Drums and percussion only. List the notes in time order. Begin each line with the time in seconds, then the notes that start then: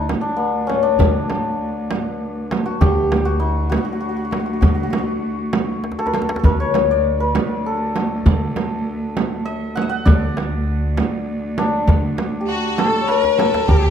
0.09 tombak tek, frame drum
0.70 tombak tek, frame drum
1.00 tombak dum, frame drum
1.30 tombak tek, frame drum
1.91 tombak tek, frame drum
2.51 tombak tek, frame drum
2.81 tombak dum, frame drum
3.12 tombak tek, frame drum
3.72 tombak tek, frame drum
4.32 tombak tek, frame drum
4.62 tombak dum, frame drum
4.93 tombak tek, frame drum
5.53 tombak tek, frame drum
5.84 tombak tek
5.92 tombak ka
5.99 tombak tek
6.07 tombak ka
6.14 tombak tek, frame drum
6.22 tombak ka
6.29 tombak tek
6.36 tombak ka
6.44 tombak dum, frame drum
6.74 tombak tek, frame drum
7.35 tombak tek, frame drum
7.96 tombak tek, frame drum
8.26 tombak dum, frame drum
8.56 tombak tek, frame drum
9.17 tombak tek, frame drum
9.77 tombak tek, frame drum
10.07 tombak dum, frame drum
10.37 tombak tek, frame drum
10.97 tombak tek, frame drum
11.58 tombak tek, frame drum
11.88 frame drum, tombak dum
12.18 tombak tek, frame drum
12.78 tombak tek, frame drum
13.09 tombak tek
13.24 tombak ka
13.38 tombak tek, frame drum
13.54 tombak ka
13.68 frame drum, tombak dum